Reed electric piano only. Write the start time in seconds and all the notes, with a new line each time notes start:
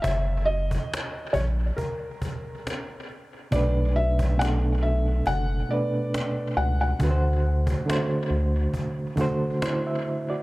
3.51 B2 A3 D4
3.56 B4
4.38 B2 A3 D4
4.43 A4
5.69 B2 A3 D4
5.74 B4
6.99 D3 A3 F#4
7.04 B4
7.11 C5
7.86 D3 A3 F#4
7.91 C5
9.16 D3 A3 F#4
9.21 C5
9.62 E4 C5
9.87 E5
10.30 F#4 D5